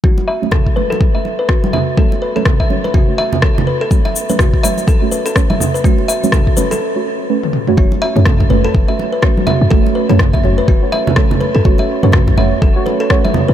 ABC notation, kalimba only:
X:1
M:4/4
L:1/16
Q:"Swing 16ths" 1/4=124
K:F#m
V:1 name="Kalimba"
F z e z A z B A z e z B F z e z | A z B A z e z B F z e z A z B A | z e z B F z e z A z B A z e z B | F z e z A z B A z8 |
F z e z A z B A z e z B F z e z | A z B A z e z B F z e z A z B A | z e z B F z e z A z B A z e z B |]